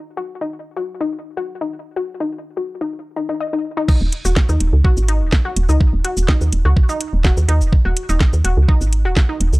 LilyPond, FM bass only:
\new Staff \with { instrumentName = "FM bass" } { \clef bass \time 4/4 \key ees \minor \tempo 4 = 125 r1 | r1 | r16 ees,,16 r16 ees,,16 r16 ees,16 ees,,16 des,16 r16 aes,,8 ees,,16 r8 ees,,16 des,16 | r16 ees,,16 r16 ees,,16 r16 ees,16 ees,,16 des,16 r8. ees,,8 ees,16 ees,16 ees,,16 |
r16 ees,,16 r16 ees,,16 r16 ees,16 ees,,16 des,16 r16 aes,,8 ees,,16 r8 ees,,16 des,16 | }